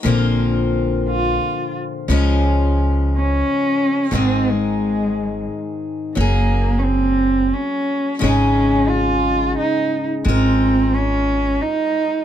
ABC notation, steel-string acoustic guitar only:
X:1
M:3/4
L:1/8
Q:"Swing" 1/4=88
K:Abmix
V:1 name="Steel-string acoustic guitar"
[B,,=D,F,B,CF]6 | [D,F,A,DF]6 | [A,,E,A,CEA]6 | [G,B,A]6 |
[A,,D,A,DEA]6 | [A,FB]6 |]